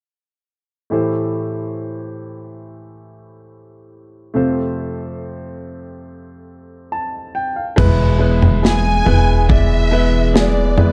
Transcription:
0.90 4.31 A2 soft
0.90 4.31 E3 soft
0.90 4.30 A3 soft
0.90 4.30 E4 soft
0.90 4.31 G4 soft
0.90 4.32 C5 soft
4.34 7.74 F2 soft
4.34 7.74 C3 soft
4.34 7.73 A3 soft
4.34 7.74 C4 soft
4.34 7.74 F4 soft
4.34 7.75 C5 soft
6.92 7.33 A5 soft
7.35 7.55 G5 medium
7.56 7.97 F5 soft
7.76 9.03 E1 medium
7.76 9.02 B2 medium
7.76 10.92 B2 medium
7.76 10.92 E3 medium
7.76 8.17 G#3 medium
7.76 10.92 G#3 medium
7.76 8.18 B3 medium
7.76 8.18 E4 medium
7.76 10.92 E4 medium
7.76 10.92 G#4 medium
7.76 8.19 B4 loud
7.76 kick medium
7.76 floor tom medium
7.76 crash medium
8.19 8.60 G#3 medium
8.19 8.61 B3 medium
8.19 8.61 E4 medium
8.19 8.61 B4 medium
8.42 floor tom medium
8.62 9.04 G#3 medium
8.62 9.04 B3 medium
8.62 9.04 E4 medium
8.62 9.04 G#4 medium
8.62 9.45 G#5 loud
8.62 snare medium
9.05 10.74 E1 medium
9.05 9.47 G#3 medium
9.05 9.47 B3 medium
9.05 9.47 E4 medium
9.05 9.47 B4 medium
9.05 floor tom medium
9.49 9.90 G#3 medium
9.49 9.90 B3 medium
9.49 9.90 E4 medium
9.49 9.90 D5 medium
9.49 10.31 E5 medium
9.49 kick medium
9.49 floor tom medium
9.91 10.32 G#3 medium
9.91 10.33 B3 medium
9.91 10.33 E4 medium
9.91 10.33 B4 medium
10.34 10.75 G#3 medium
10.34 10.76 B3 medium
10.34 10.76 E4 medium
10.34 10.76 G#4 medium
10.34 10.92 D5 medium
10.34 snare loud
10.77 10.92 G#3 medium
10.77 10.92 B3 medium
10.77 10.92 E4 medium
10.77 10.92 B4 medium
10.77 floor tom medium

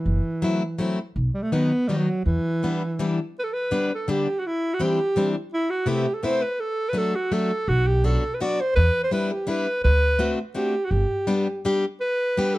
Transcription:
0.00 0.99 E3 medium
0.05 0.18 F#1 medium
0.42 0.61 F#3 medium
0.42 0.62 A3 soft
0.42 0.62 C4 soft
0.42 0.62 E4 medium
0.78 0.98 F#3 medium
0.78 0.98 A3 soft
0.78 0.98 C4 medium
0.78 0.99 E4 medium
1.16 1.28 B1 medium
1.34 1.44 G3 medium
1.43 1.54 A3 medium
1.52 1.71 D#3 soft
1.52 1.72 F#3 medium
1.52 1.89 B3 loud
1.52 1.71 B3 medium
1.52 1.71 D#4 medium
1.88 2.08 D#3 soft
1.88 2.08 F#3 soft
1.88 1.99 G3 medium
1.88 2.08 B3 soft
1.88 2.08 D#4 soft
1.98 2.25 F#3 medium
2.25 2.38 E2 medium
2.25 3.14 E3 medium
2.63 2.82 E3 medium
2.63 2.82 G3 soft
2.63 2.82 B3 medium
2.63 2.82 D4 medium
2.99 3.18 E3 medium
2.99 3.19 G3 medium
2.99 3.19 B3 soft
2.99 3.19 D4 medium
3.39 3.45 B4 medium
3.44 3.55 A4 medium
3.54 3.93 B4 medium
3.71 3.90 D3 medium
3.71 3.91 G3 soft
3.71 3.91 B3 medium
3.71 3.91 D4 medium
3.95 4.12 A4 medium
4.08 4.27 D3 soft
4.08 4.27 G3 soft
4.08 4.27 B3 soft
4.08 4.27 D4 medium
4.08 4.41 G4 medium
4.39 4.48 F#4 medium
4.47 4.75 E4 medium
4.74 4.84 F#4 medium
4.79 4.98 E3 medium
4.79 4.99 G3 soft
4.79 4.99 C4 soft
4.79 4.99 D4 medium
4.79 5.36 G4 medium
5.16 5.34 E3 medium
5.16 5.35 G3 medium
5.16 5.35 C4 soft
5.16 5.35 D4 medium
5.53 5.71 E4 medium
5.70 5.90 F#4 medium
5.86 6.05 C3 medium
5.86 6.06 A3 medium
5.86 6.05 B3 soft
5.86 6.06 C4 medium
5.86 6.06 E4 medium
5.86 6.16 G4 medium
6.14 6.26 A4 medium
6.23 6.42 C3 medium
6.23 6.42 A3 soft
6.23 6.42 B3 soft
6.23 6.42 C4 soft
6.23 6.42 E4 medium
6.23 6.43 C5 medium
6.42 6.61 B4 medium
6.60 6.90 A4 loud
6.89 6.99 B4 medium
6.93 7.13 F#3 medium
6.93 7.13 A3 soft
6.93 7.13 D4 soft
6.93 7.14 F#4 medium
6.98 7.17 A4 medium
7.16 7.35 F#4 medium
7.31 7.51 F#3 soft
7.31 7.51 A3 soft
7.31 7.51 D4 soft
7.31 7.51 F#4 medium
7.31 7.70 A4 medium
7.68 8.15 B1 medium
7.68 7.88 F#4 medium
7.87 8.07 G4 medium
8.04 8.23 F#3 medium
8.04 8.23 B3 medium
8.04 8.23 D4 medium
8.04 8.23 F#4 medium
8.04 8.35 A4 medium
8.34 8.43 B4 medium
8.40 8.59 F#3 soft
8.40 8.59 B3 soft
8.40 8.59 D4 soft
8.40 8.60 F#4 medium
8.40 8.62 D5 medium
8.60 8.75 C5 medium
8.76 8.89 E2 medium
8.76 9.01 B4 loud
9.04 9.12 C5 loud
9.11 9.31 G3 medium
9.11 9.31 B3 soft
9.11 9.31 D4 medium
9.11 9.31 E4 medium
9.11 9.34 B4 medium
9.32 9.51 G4 medium
9.47 9.66 G3 medium
9.47 9.67 B3 soft
9.47 9.66 D4 soft
9.47 9.67 E4 soft
9.47 9.83 B4 medium
9.84 10.31 D2 medium
9.84 10.35 B4 loud
10.19 10.38 A3 medium
10.19 10.38 C4 medium
10.19 10.38 D4 medium
10.19 10.39 F#4 medium
10.54 10.74 A3 soft
10.54 10.74 C4 soft
10.54 10.74 D4 soft
10.54 10.74 F#4 soft
10.54 10.86 G4 medium
10.85 10.92 F#4 medium
10.91 11.03 G1 medium
10.91 11.64 G4 medium
11.27 11.47 G3 medium
11.27 11.47 B3 medium
11.27 11.47 D4 medium
11.27 11.47 G4 medium
11.65 11.84 G3 medium
11.65 11.84 B3 soft
11.65 11.84 D4 soft
11.65 11.84 G4 medium
12.01 12.56 B4 medium
12.37 12.56 G3 medium
12.37 12.57 B3 soft
12.37 12.57 D4 medium
12.37 12.57 G4 medium
12.55 12.58 A4 medium

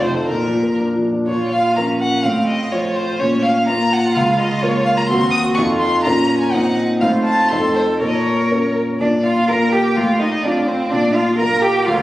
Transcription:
0.00 0.27 F2 medium
0.00 0.22 F3 soft
0.00 0.28 C5 medium
0.05 0.13 C3 soft
0.13 0.27 D#4 soft
0.13 0.27 A4 soft
0.28 1.25 A#2 medium
0.28 0.78 A#2 medium
0.28 0.77 A#4 medium
0.46 0.72 F3 soft
0.63 0.89 A#4 soft
0.80 1.05 D4 soft
0.96 1.22 F3 soft
1.13 1.28 D4 soft
1.27 1.75 A#2 soft
1.27 1.80 F4 medium
1.27 1.50 C#5 medium
1.51 1.76 F5 medium
1.77 2.21 F3 soft
1.77 2.27 C#4 soft
1.77 2.21 F4 soft
1.77 2.21 A#4 soft
1.77 1.85 A#5 medium
2.00 2.25 F#5 medium
2.23 2.72 A2 soft
2.23 2.73 C4 soft
2.23 2.47 F5 medium
2.47 2.73 D#5 medium
2.72 3.17 F3 soft
2.72 3.20 F4 medium
2.72 3.17 F4 soft
2.72 3.18 C5 soft
2.72 2.98 C#5 medium
2.96 3.21 C5 medium
3.19 3.67 A#2 soft
3.19 3.70 C#4 medium
3.19 3.44 C#5 medium
3.43 3.67 F5 medium
3.67 4.12 A#3 soft
3.67 5.09 F4 medium
3.67 4.13 F4 soft
3.67 4.13 A#4 soft
3.67 3.94 A#5 medium
3.93 4.17 F#5 medium
4.15 4.62 C#2 medium
4.15 4.41 F5 medium
4.39 4.64 D#5 medium
4.62 5.07 A#3 soft
4.62 5.07 F4 soft
4.62 5.07 A#4 soft
4.62 4.85 C#5 medium
4.85 4.90 F5 medium
4.97 5.02 A#5 medium
5.08 5.57 D#2 medium
5.08 5.54 C4 soft
5.08 5.60 F#4 medium
5.08 5.54 F#4 soft
5.08 5.54 A#4 soft
5.08 5.30 C6 medium
5.31 5.39 D#6 medium
5.54 6.02 D#4 soft
5.54 5.62 C#6 medium
5.58 6.04 F2 medium
5.58 6.08 F4 medium
5.58 6.02 F4 soft
5.58 6.02 A4 soft
5.79 6.03 C6 medium
6.03 6.53 A#2 medium
6.03 6.50 C#4 soft
6.03 6.56 C#4 medium
6.03 6.50 F4 soft
6.03 6.50 A#4 soft
6.03 6.40 A#5 medium
6.41 6.54 G#5 medium
6.52 7.01 A#2 medium
6.52 6.98 C4 soft
6.52 6.98 D#4 soft
6.52 7.02 D#4 medium
6.52 6.99 C5 soft
6.52 6.77 F#5 medium
7.01 7.49 A2 medium
7.01 7.47 C4 soft
7.01 7.47 D#4 soft
7.01 7.53 F4 medium
7.01 7.48 C5 soft
7.01 7.09 F5 medium
7.25 7.51 A5 medium
7.49 7.99 F2 soft
7.49 7.97 C4 soft
7.49 7.97 D#4 soft
7.49 7.99 A4 medium
7.49 7.97 A4 soft
7.49 7.75 C6 medium
7.76 7.84 C5 medium
8.00 8.49 A#2 soft
8.00 8.73 A#4 medium
8.00 8.09 C#5 medium
8.08 8.17 D#5 soft
8.15 8.75 C#5 medium
8.51 8.96 A#3 soft
8.51 8.97 C#4 soft
8.51 8.97 A#4 soft
8.99 9.47 A#2 soft
8.99 9.09 D4 medium
8.99 9.25 D5 soft
9.24 9.50 F4 medium
9.24 9.50 F5 soft
9.48 9.93 A#3 soft
9.48 9.93 F4 soft
9.48 9.74 A#4 medium
9.48 9.93 A#4 soft
9.48 9.71 A#5 medium
9.72 9.98 G4 medium
9.72 9.99 G5 medium
9.96 10.43 A2 medium
9.96 10.21 F4 medium
9.96 10.20 F5 soft
10.20 10.45 D#4 medium
10.20 10.45 D#5 soft
10.43 10.88 C4 soft
10.43 10.67 D4 medium
10.43 10.88 F4 soft
10.43 10.69 D5 medium
10.43 10.88 F5 soft
10.67 10.92 C4 medium
10.67 10.91 C5 medium
10.91 11.38 A#2 medium
10.91 11.16 D4 medium
10.91 11.14 D5 medium
11.15 11.39 F4 medium
11.15 11.23 F5 medium
11.38 11.83 A#3 soft
11.38 11.83 F4 soft
11.38 11.64 A#4 medium
11.38 11.83 F5 soft
11.38 11.61 A#5 medium
11.62 11.87 G4 medium
11.62 11.87 G5 medium
11.85 12.02 D2 medium
11.85 12.02 F4 medium
11.85 12.02 F5 medium

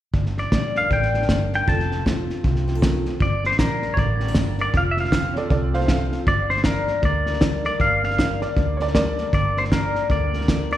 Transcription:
0.14 0.46 G1 medium
0.14 1.67 G2 medium
0.14 kick medium
0.14 snare soft
0.26 snare soft
0.38 0.78 D5 medium
0.38 snare soft
0.52 0.85 A#1 medium
0.52 1.65 G3 medium
0.52 kick medium
0.52 snare medium
0.52 hi-hat pedal medium
0.75 1.68 A#3 soft
0.75 0.92 F5 medium
0.75 snare soft
0.90 1.23 A1 medium
0.90 1.29 D3 medium
0.90 1.28 G5 medium
0.90 kick medium
0.90 snare soft
1.02 snare soft
1.14 1.68 D4 medium
1.14 snare soft
1.22 snare soft
1.29 1.62 G1 medium
1.29 1.53 D3 medium
1.29 kick medium
1.29 snare medium
1.29 hi-hat pedal medium
1.53 1.68 D#3 medium
1.53 1.69 G5 medium
1.53 snare soft
1.67 2.31 F1 medium
1.67 3.05 F3 medium
1.67 2.05 C4 medium
1.67 2.29 F4 medium
1.67 2.67 A4 medium
1.67 2.04 A5 medium
1.67 kick loud
1.67 snare soft
1.80 snare soft
1.92 snare soft
2.06 3.19 C4 medium
2.06 kick medium
2.06 snare medium
2.06 hi-hat pedal medium
2.30 3.20 F4 soft
2.30 snare soft
2.44 3.08 C2 medium
2.44 2.83 C3 medium
2.44 kick medium
2.44 snare soft
2.56 snare soft
2.68 2.75 G4 medium
2.68 snare soft
2.75 3.21 A4 medium
2.82 3.06 D#3 medium
2.82 kick medium
2.82 snare medium
2.82 hi-hat pedal medium
3.06 3.21 F3 medium
3.06 snare soft
3.20 3.53 G1 medium
3.20 4.74 G2 medium
3.20 3.43 D5 medium
3.20 kick medium
3.20 snare soft
3.44 3.59 C5 medium
3.44 snare soft
3.51 snare soft
3.59 3.91 A#1 medium
3.59 4.72 G3 medium
3.59 4.74 A#3 medium
3.59 3.93 A#4 medium
3.59 kick medium
3.59 snare medium
3.59 hi-hat pedal medium
3.82 snare soft
3.94 4.30 A1 medium
3.94 4.35 D3 medium
3.94 3.98 C#5 medium
3.94 kick loud
3.94 snare soft
3.98 4.56 D5 medium
4.20 4.28 G4 medium
4.20 snare soft
4.27 4.74 A#4 soft
4.27 snare soft
4.34 4.68 G1 medium
4.34 4.59 D3 medium
4.34 kick medium
4.34 snare loud
4.34 hi-hat pedal medium
4.58 4.74 D#3 medium
4.58 4.76 D5 medium
4.58 snare soft
4.73 5.38 F1 medium
4.73 6.28 F3 medium
4.73 4.82 F5 loud
4.73 kick loud
4.73 snare soft
4.91 4.99 E5 medium
4.97 5.35 F5 medium
4.97 snare soft
5.05 snare soft
5.12 5.87 C4 medium
5.12 6.12 F4 medium
5.12 kick medium
5.12 snare loud
5.12 hi-hat pedal medium
5.34 5.49 A4 medium
5.34 5.36 C#5 medium
5.34 5.49 D5 medium
5.34 snare soft
5.50 6.14 C2 medium
5.50 6.27 C3 medium
5.50 5.72 A4 medium
5.50 5.74 D5 medium
5.50 kick medium
5.50 snare soft
5.74 5.88 A4 medium
5.74 5.88 C5 medium
5.74 5.89 F5 medium
5.74 snare soft
5.81 snare soft
5.86 6.25 C4 medium
5.86 6.26 A4 medium
5.86 5.89 E5 medium
5.86 kick medium
5.86 snare medium
5.86 hi-hat pedal medium
5.90 6.20 F5 medium
6.12 6.26 F4 medium
6.12 snare soft
6.26 6.91 G1 medium
6.26 7.80 G2 medium
6.26 6.49 D5 medium
6.26 kick loud
6.26 snare soft
6.50 6.64 C5 medium
6.50 snare soft
6.57 snare soft
6.64 7.42 G3 medium
6.64 7.66 A#3 medium
6.64 7.05 A#4 medium
6.64 kick medium
6.64 snare loud
6.64 hi-hat pedal medium
6.88 snare soft
7.02 7.67 D2 medium
7.02 7.78 D3 medium
7.02 7.65 D5 medium
7.02 kick medium
7.02 snare soft
7.26 8.80 A#4 medium
7.26 snare soft
7.33 snare soft
7.41 8.19 G3 medium
7.41 8.95 D4 medium
7.41 kick medium
7.41 snare loud
7.41 hi-hat pedal medium
7.64 8.20 A#3 medium
7.64 7.81 D5 medium
7.64 snare soft
7.79 8.44 G1 medium
7.79 9.33 G2 medium
7.79 8.02 F5 loud
7.79 kick loud
7.79 snare soft
8.04 8.40 F5 medium
8.04 snare soft
8.11 snare soft
8.19 8.94 G3 medium
8.19 9.19 A#3 soft
8.19 kick medium
8.19 snare medium
8.19 hi-hat pedal medium
8.42 8.79 D5 medium
8.42 snare soft
8.57 9.21 D2 medium
8.57 9.32 D3 medium
8.57 kick medium
8.57 snare soft
8.77 9.32 A#4 medium
8.77 8.79 C#5 medium
8.77 snare soft
8.82 8.94 D5 medium
8.88 snare soft
8.95 9.32 G3 medium
8.95 10.77 D4 medium
8.95 9.24 A#4 medium
8.95 9.25 D5 medium
8.95 kick medium
8.95 snare loud
8.95 hi-hat pedal medium
9.18 9.72 A#3 soft
9.18 snare soft
9.33 9.97 G1 medium
9.33 9.58 D5 medium
9.33 kick medium
9.33 snare soft
9.57 9.63 C5 medium
9.57 snare soft
9.64 snare soft
9.72 10.77 G3 medium
9.72 10.77 A#3 medium
9.72 10.08 A#4 medium
9.72 kick medium
9.72 snare medium
9.72 hi-hat pedal medium
9.95 snare soft
10.09 10.74 D2 medium
10.09 10.47 D3 medium
10.09 10.71 D5 medium
10.09 kick medium
10.09 snare soft
10.33 10.77 A#4 medium
10.33 snare soft
10.41 snare soft
10.48 10.71 D3 medium
10.48 kick medium
10.48 snare loud
10.48 hi-hat pedal medium
10.71 10.77 D#3 medium
10.71 10.77 D5 medium
10.71 snare soft

